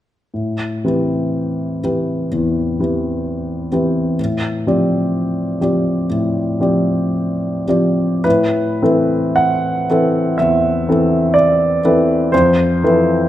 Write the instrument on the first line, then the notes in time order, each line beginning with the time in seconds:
grand piano
0.34 A2
0.84 E3 C4 G4 B4
1.84 E3 C4 G4 B4
2.32 E2
2.79 E3 C4 G4 B4
3.72 E3 C4 G4 B4
4.20 A2
4.67 F3 C4 G4 D5
5.61 F3 C4 G4 D5
6.10 A2
6.60 F3 C4 G4 D5
7.68 F3 C4 G4 D5
8.24 A2 B4
8.82 E3 C4 A4 B4
9.36 F#5
9.90 E3 C4 A4 B4
10.38 E2 E5
10.89 E3 C4 A4 B4
11.34 D5
11.85 E3 C4 A4 B4
12.32 F2 C5
12.84 E3 C4 A4 B4